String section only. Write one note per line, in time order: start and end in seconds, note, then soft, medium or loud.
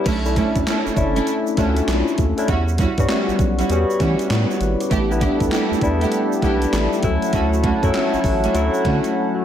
0.05 0.25 A3 medium
0.05 0.25 C#4 medium
0.05 0.26 D4 medium
0.05 0.26 E4 loud
0.36 0.56 A3 medium
0.36 0.56 C#4 medium
0.36 0.56 D4 medium
0.36 0.56 E4 medium
0.66 0.86 A3 medium
0.66 0.86 C#4 medium
0.66 0.86 D4 medium
0.66 0.86 E4 medium
1.15 1.27 A3 medium
1.15 1.27 C#4 medium
1.15 1.28 D4 medium
1.15 1.28 E4 medium
1.57 1.77 A3 medium
1.57 1.77 C#4 medium
1.57 1.77 D4 medium
1.57 1.77 E4 medium
2.48 2.68 G3 medium
2.48 2.68 C#4 medium
2.48 2.68 E4 medium
2.48 2.68 F#4 loud
2.78 2.98 G3 medium
2.78 2.98 C#4 medium
2.78 2.99 E4 medium
2.78 2.99 F#4 medium
3.09 3.29 G3 medium
3.09 3.29 C#4 medium
3.09 3.29 E4 medium
3.09 3.29 F#4 medium
3.59 3.70 G3 medium
3.59 3.70 C#4 medium
3.59 3.71 E4 medium
3.59 3.71 F#4 medium
4.00 4.20 G3 medium
4.00 4.20 C#4 medium
4.00 4.20 E4 medium
4.00 4.20 F#4 medium
4.90 5.10 A3 medium
4.90 5.10 D4 medium
4.90 5.11 E4 medium
4.90 5.11 G4 loud
5.20 5.41 A3 medium
5.20 5.41 D4 medium
5.20 5.41 E4 medium
5.20 5.41 G4 medium
5.50 5.71 A3 medium
5.50 5.71 D4 medium
5.50 5.71 E4 medium
5.50 5.71 G4 medium
6.01 6.13 A3 medium
6.01 6.13 D4 medium
6.01 6.13 E4 medium
6.01 6.13 G4 medium
6.42 6.62 A3 medium
6.42 6.62 D4 medium
6.42 6.62 E4 medium
6.42 6.62 G4 medium
7.33 7.53 A3 medium
7.33 7.53 C#4 medium
7.33 7.53 D4 medium
7.33 7.53 F#4 loud
7.63 7.83 A3 medium
7.63 7.83 C#4 medium
7.63 7.83 D4 medium
7.63 7.83 F#4 medium
7.93 8.13 A3 medium
7.93 8.14 C#4 medium
7.93 8.14 D4 medium
7.93 8.14 F#4 medium
8.43 8.55 A3 medium
8.43 8.55 C#4 medium
8.43 8.55 D4 medium
8.43 8.55 F#4 medium
8.85 9.05 A3 medium
8.85 9.05 C#4 medium
8.85 9.05 D4 medium
8.85 9.05 F#4 medium